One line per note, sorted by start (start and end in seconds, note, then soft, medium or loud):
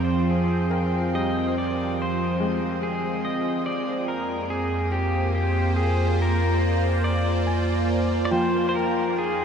0.00 3.62 F2 medium
0.00 1.30 F3 medium
0.00 3.67 F3 medium
0.00 9.45 F3 medium
0.00 5.65 C4 medium
0.00 9.45 F4 medium
0.00 0.88 G#4 medium
0.00 4.64 G5 medium
0.05 0.32 C5 loud
0.30 1.17 G#4 medium
0.70 4.88 A#4 medium
0.70 4.88 G5 medium
1.14 2.57 G3 medium
1.14 1.58 D#5 loud
1.58 2.00 D5 medium
2.02 2.87 C5 medium
2.40 6.57 G#3 medium
2.83 3.26 G#4 medium
3.25 3.66 D#5 medium
3.66 8.70 F2 medium
3.66 9.45 A#3 medium
3.66 4.10 D5 loud
4.08 4.52 A#4 medium
4.31 9.45 C5 medium
4.50 9.45 F4 medium
4.50 4.94 G#4 medium
4.92 5.34 G4 medium
5.31 5.76 G4 medium
5.31 9.45 D5 medium
5.76 6.21 G#4 medium
6.22 7.08 A#4 loud
7.04 8.24 D5 loud
7.47 8.48 G#5 medium
8.25 8.32 D5 medium
8.31 9.45 F3 medium
8.31 8.68 C5 loud
8.31 9.45 G5 medium
8.69 8.75 C5 medium
8.73 9.45 F2 medium
8.73 9.45 D#4 medium
8.73 9.18 A#4 loud
9.18 9.45 G#4 medium
9.31 9.45 A#4 medium
9.41 9.45 F5 medium